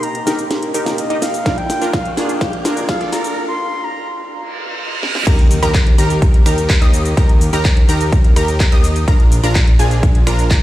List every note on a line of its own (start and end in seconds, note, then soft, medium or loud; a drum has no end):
0.00 0.26 A#3 medium
0.00 0.26 D#4 medium
0.00 0.27 G4 medium
0.00 0.28 A#4 loud
0.00 0.27 A#5 medium
0.00 closed hi-hat medium
0.00 riser medium
0.00 shaker soft
0.15 closed hi-hat soft
0.26 0.83 A#3 medium
0.26 0.83 D#4 medium
0.26 0.72 D#4 medium
0.26 0.71 G4 medium
0.26 0.84 G4 medium
0.26 0.71 A#4 loud
0.26 0.84 A#4 medium
0.26 snare medium
0.26 open hi-hat loud
0.26 shaker medium
0.39 closed hi-hat soft
0.39 shaker soft
0.51 snare medium
0.51 closed hi-hat medium
0.51 shaker soft
0.63 closed hi-hat soft
0.74 1.07 D#4 medium
0.74 1.07 G4 medium
0.74 1.07 A#4 loud
0.74 open hi-hat loud
0.74 shaker medium
0.85 1.42 A#3 medium
0.85 1.43 D#4 medium
0.85 1.43 G4 medium
0.85 1.44 A#4 medium
0.85 snare medium
0.85 closed hi-hat soft
0.85 shaker soft
0.98 1.24 D#5 medium
0.98 closed hi-hat medium
0.98 shaker soft
1.10 1.43 D#4 medium
1.10 1.43 G4 medium
1.10 1.43 D#5 medium
1.10 closed hi-hat soft
1.22 1.45 F5 medium
1.22 snare medium
1.22 open hi-hat loud
1.22 shaker medium
1.34 closed hi-hat soft
1.34 shaker soft
1.45 2.14 A#3 medium
1.45 2.14 D4 medium
1.45 1.79 D4 medium
1.45 1.79 F4 medium
1.45 2.15 F4 medium
1.45 1.79 A#4 medium
1.45 2.15 A#4 loud
1.45 1.57 F5 loud
1.45 kick loud
1.45 snare medium
1.45 closed hi-hat medium
1.45 shaker soft
1.58 1.91 G5 loud
1.58 closed hi-hat soft
1.70 snare medium
1.70 open hi-hat loud
1.70 shaker medium
1.82 1.94 D4 medium
1.82 1.94 F4 medium
1.82 1.94 A#4 loud
1.82 closed hi-hat soft
1.82 shaker soft
1.93 2.16 F5 medium
1.93 kick loud
1.93 snare medium
1.93 closed hi-hat medium
1.93 shaker soft
2.05 closed hi-hat soft
2.16 2.73 A#3 medium
2.16 2.74 D4 medium
2.16 2.62 D4 medium
2.16 2.62 F4 medium
2.16 2.74 F4 medium
2.16 2.62 G#4 loud
2.16 2.75 A#4 medium
2.16 snare medium
2.16 open hi-hat loud
2.16 shaker medium
2.29 closed hi-hat soft
2.29 shaker soft
2.41 kick loud
2.41 snare medium
2.41 closed hi-hat medium
2.41 shaker soft
2.53 closed hi-hat soft
2.65 2.98 D4 medium
2.65 2.98 F4 medium
2.65 2.98 A#4 medium
2.65 snare medium
2.65 open hi-hat loud
2.65 shaker medium
2.76 3.33 A#3 medium
2.76 3.33 D4 medium
2.76 3.34 F4 medium
2.76 3.34 A#4 medium
2.76 closed hi-hat soft
2.76 shaker soft
2.89 3.11 F5 medium
2.89 kick loud
2.89 snare medium
2.89 closed hi-hat medium
2.89 shaker soft
3.01 3.33 D4 medium
3.01 3.33 F4 medium
3.01 3.33 D5 loud
3.01 closed hi-hat soft
3.13 3.35 A#5 medium
3.13 snare medium
3.13 open hi-hat loud
3.13 shaker medium
3.24 closed hi-hat soft
3.24 shaker soft
3.37 3.42 A#5 loud
3.48 3.85 C6 loud
3.84 4.08 A#5 loud
4.31 reverse cymbal medium
5.03 snare medium
5.15 snare medium
5.27 5.60 D#2 loud
5.27 5.60 D#4 medium
5.27 5.60 G4 medium
5.27 5.60 A#4 medium
5.27 5.60 A#5 medium
5.27 kick loud
5.27 closed hi-hat medium
5.27 crash loud
5.27 impact medium
5.27 shaker soft
5.39 closed hi-hat soft
5.51 open hi-hat loud
5.51 shaker medium
5.62 5.96 D#2 loud
5.62 5.75 D#4 medium
5.62 5.75 G4 medium
5.62 5.75 A#4 loud
5.62 5.75 A#5 loud
5.62 closed hi-hat soft
5.62 shaker soft
5.74 finger snap medium
5.74 kick loud
5.74 clap loud
5.74 closed hi-hat medium
5.74 shaker soft
5.87 closed hi-hat soft
5.98 6.43 D#2 loud
5.98 6.43 D#4 medium
5.98 6.43 G4 medium
5.98 6.43 A#4 loud
5.98 6.43 A#5 loud
5.98 open hi-hat loud
5.98 shaker medium
6.10 closed hi-hat soft
6.10 shaker soft
6.22 kick loud
6.22 closed hi-hat medium
6.22 shaker soft
6.34 closed hi-hat soft
6.46 6.79 D#2 medium
6.46 6.79 D#4 medium
6.46 6.79 G4 medium
6.46 6.79 A#4 loud
6.46 6.79 A#5 medium
6.46 finger snap medium
6.46 open hi-hat loud
6.46 shaker medium
6.58 closed hi-hat soft
6.58 shaker soft
6.70 kick loud
6.70 clap loud
6.70 closed hi-hat medium
6.70 shaker soft
6.81 7.15 D#2 loud
6.81 7.14 D#4 medium
6.81 7.14 G4 medium
6.81 7.14 D#5 loud
6.81 7.14 D#6 medium
6.81 closed hi-hat soft
6.94 open hi-hat loud
6.94 shaker medium
7.05 closed hi-hat soft
7.05 shaker soft
7.17 7.51 D#2 loud
7.17 7.50 D#4 medium
7.17 7.50 G4 medium
7.17 7.50 A#4 medium
7.17 7.50 A#5 medium
7.17 kick loud
7.17 closed hi-hat medium
7.17 shaker soft
7.29 closed hi-hat soft
7.41 open hi-hat loud
7.41 shaker medium
7.53 7.86 D#2 medium
7.53 7.66 D#4 medium
7.53 7.66 G4 medium
7.53 7.66 A#4 loud
7.53 7.66 A#5 loud
7.53 closed hi-hat soft
7.53 shaker soft
7.65 finger snap medium
7.65 kick loud
7.65 clap loud
7.65 closed hi-hat medium
7.65 shaker soft
7.77 closed hi-hat soft
7.89 8.34 D#2 loud
7.89 8.33 D#4 medium
7.89 8.33 G4 medium
7.89 8.33 A#4 loud
7.89 8.33 A#5 loud
7.89 open hi-hat loud
7.89 shaker medium
8.01 closed hi-hat soft
8.01 shaker soft
8.12 kick loud
8.12 closed hi-hat medium
8.12 shaker soft
8.24 closed hi-hat soft
8.36 8.70 D#2 loud
8.36 8.69 D#4 medium
8.36 8.69 G4 medium
8.36 8.69 A#4 loud
8.36 8.69 A#5 medium
8.36 finger snap medium
8.36 open hi-hat loud
8.36 shaker medium
8.48 closed hi-hat soft
8.48 shaker soft
8.60 kick loud
8.60 clap loud
8.60 closed hi-hat medium
8.60 shaker soft
8.72 9.05 D#2 loud
8.72 9.05 D#4 medium
8.72 9.05 G4 medium
8.72 9.05 D#5 loud
8.72 9.05 D#6 loud
8.72 closed hi-hat soft
8.84 open hi-hat loud
8.84 shaker medium
8.96 closed hi-hat soft
8.96 shaker soft
9.08 9.41 A#1 medium
9.08 9.41 D4 medium
9.08 9.41 F4 medium
9.08 9.41 A#4 medium
9.08 9.41 A#5 medium
9.08 kick loud
9.08 closed hi-hat medium
9.08 shaker soft
9.20 closed hi-hat soft
9.32 open hi-hat loud
9.32 shaker medium
9.43 9.77 A#1 loud
9.43 9.56 D4 medium
9.43 9.56 F4 medium
9.43 9.56 A#4 loud
9.43 9.56 A#5 loud
9.43 closed hi-hat soft
9.43 shaker soft
9.55 finger snap medium
9.55 kick loud
9.55 clap loud
9.55 closed hi-hat medium
9.55 shaker soft
9.67 closed hi-hat soft
9.79 10.24 A#1 medium
9.79 10.24 D4 medium
9.79 10.24 F4 medium
9.79 10.24 G#4 loud
9.79 10.24 G#5 loud
9.79 open hi-hat loud
9.79 shaker medium
9.91 closed hi-hat soft
9.91 shaker soft
10.03 kick loud
10.03 closed hi-hat medium
10.03 shaker soft
10.15 closed hi-hat soft
10.27 10.60 A#1 loud
10.27 10.60 D4 medium
10.27 10.60 F4 medium
10.27 10.60 A#4 loud
10.27 10.60 A#5 medium
10.27 finger snap medium
10.27 open hi-hat loud
10.27 shaker medium
10.39 closed hi-hat soft
10.39 shaker soft
10.51 kick loud
10.51 clap loud
10.51 closed hi-hat medium
10.51 shaker soft